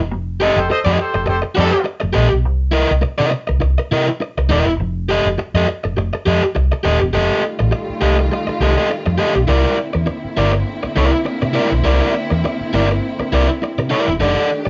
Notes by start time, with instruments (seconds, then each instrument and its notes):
0.00 fingered electric bass E1
0.11 fingered electric bass F1
0.40 horn section C4 D#4 A4, overdriven electric guitar G4 A4 D#5
0.56 fingered electric bass F1, horn section G4 A4 C5
0.69 horn section A4 C5 D#5, muted fingered electric bass stroke, muted overdriven electric guitar stroke
0.85 fingered electric bass F2, overdriven electric guitar G4 A4 D#5
0.99 horn section G4 A4 C5, muted overdriven electric guitar stroke
1.14 fingered electric bass F1, muted overdriven electric guitar stroke
1.26 fingered electric bass F1, horn section G4 A4 C5, muted overdriven electric guitar stroke
1.42 muted overdriven electric guitar stroke
1.55 fingered electric bass F2, horn section C4 D#4 A4, overdriven electric guitar G4 A4 D#5
1.71 muted overdriven electric guitar stroke
1.84 muted overdriven electric guitar stroke
2.00 fingered electric bass F1, muted overdriven electric guitar stroke
2.13 fingered electric bass A#1, overdriven electric guitar G4 A4 D#5
2.29 fingered electric bass B1, muted overdriven electric guitar stroke
2.45 fingered electric bass C2
2.71 overdriven electric guitar E4 A#4 D#5
2.91 fingered electric bass C2
3.01 muted overdriven electric guitar stroke, muted fingered electric bass stroke
3.18 fingered electric bass C3, overdriven electric guitar E4 A#4 D#5
3.31 muted overdriven electric guitar stroke
3.47 fingered electric bass C2, muted overdriven electric guitar stroke
3.60 fingered electric bass C2, muted overdriven electric guitar stroke
3.78 muted overdriven electric guitar stroke
3.91 fingered electric bass C3, overdriven electric guitar E4 A#4 D#5
4.08 muted overdriven electric guitar stroke
4.20 muted overdriven electric guitar stroke
4.38 fingered electric bass C2, muted overdriven electric guitar stroke
4.49 fingered electric bass D#1, overdriven electric guitar E4 A#4 D#5
4.66 fingered electric bass E1, muted overdriven electric guitar stroke
4.80 fingered electric bass F1
5.09 overdriven electric guitar G4 A4 D#5
5.25 fingered electric bass F1
5.38 muted overdriven electric guitar stroke, muted fingered electric bass stroke
5.54 fingered electric bass F2, overdriven electric guitar G4 A4 D#5
5.68 muted overdriven electric guitar stroke
5.84 fingered electric bass F1, muted overdriven electric guitar stroke
5.97 fingered electric bass F1, muted overdriven electric guitar stroke
6.13 muted overdriven electric guitar stroke
6.26 fingered electric bass F2, overdriven electric guitar G4 A4 D#5
6.44 muted overdriven electric guitar stroke
6.55 fingered electric bass C2, muted overdriven electric guitar stroke
6.72 muted overdriven electric guitar stroke
6.83 fingered electric bass D#1, overdriven electric guitar G4 A4 D#5
7.00 fingered electric bass E1, muted overdriven electric guitar stroke
7.13 fingered electric bass F1, string section D#3 G3 A3 F4, overdriven electric guitar G4 A4 D#5
7.59 fingered electric bass A1, muted overdriven electric guitar stroke
7.71 muted overdriven electric guitar stroke
7.90 muted fingered electric bass stroke
8.01 fingered electric bass C2, overdriven electric guitar G4 A4 D#5
8.19 muted overdriven electric guitar stroke
8.32 muted overdriven electric guitar stroke
8.47 muted overdriven electric guitar stroke, muted fingered electric bass stroke
8.60 fingered electric bass C2, overdriven electric guitar G4 A4 D#5
8.77 overdriven electric guitar G4 A4 D#5
8.89 muted overdriven electric guitar stroke
9.06 fingered electric bass F2, muted overdriven electric guitar stroke
9.18 overdriven electric guitar G4 A4 D#5
9.35 fingered electric bass B1, muted overdriven electric guitar stroke
9.47 fingered electric bass C2, string section D3 A#3 C4 E4, overdriven electric guitar E4 A#4 D5
9.93 fingered electric bass E2, muted overdriven electric guitar stroke
10.06 muted overdriven electric guitar stroke
10.25 muted fingered electric bass stroke
10.37 fingered electric bass G1, overdriven electric guitar E4 A#4 D5
10.53 muted overdriven electric guitar stroke
10.83 muted overdriven electric guitar stroke, muted fingered electric bass stroke
10.96 fingered electric bass C2, overdriven electric guitar E4 A#4 D5
11.12 muted overdriven electric guitar stroke
11.25 muted overdriven electric guitar stroke
11.42 fingered electric bass C3, muted overdriven electric guitar stroke
11.53 overdriven electric guitar E4 A#4 D5
11.71 fingered electric bass B1, muted overdriven electric guitar stroke
11.84 fingered electric bass C2, overdriven electric guitar E4 A#4 D5
12.30 fingered electric bass E2, muted overdriven electric guitar stroke
12.44 muted overdriven electric guitar stroke
12.61 muted fingered electric bass stroke
12.73 fingered electric bass G1, overdriven electric guitar E4 A#4 D5
12.91 muted overdriven electric guitar stroke
13.19 muted fingered electric bass stroke, muted overdriven electric guitar stroke
13.32 fingered electric bass C2, overdriven electric guitar E4 A#4 D5
13.49 muted overdriven electric guitar stroke
13.62 muted overdriven electric guitar stroke
13.78 fingered electric bass C3, muted overdriven electric guitar stroke
13.90 overdriven electric guitar E4 A#4 D5
14.07 fingered electric bass E1, muted overdriven electric guitar stroke
14.20 fingered electric bass F1, string section D#3 A3 D4 G4, overdriven electric guitar D#4 A4 D5
14.65 fingered electric bass A1, muted overdriven electric guitar stroke